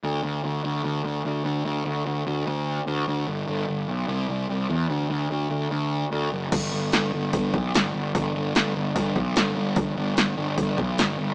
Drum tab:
CC |--------|--------|--------|--------|
HH |--------|--------|--------|--------|
SD |--------|--------|--------|--------|
BD |--------|--------|--------|--------|

CC |x-------|--------|--------|
HH |o-o-o-o-|o-o-o-o-|o-o-o-o-|
SD |--o---o-|--o---o-|--o---o-|
BD |o---oo--|o---oo--|o---oo--|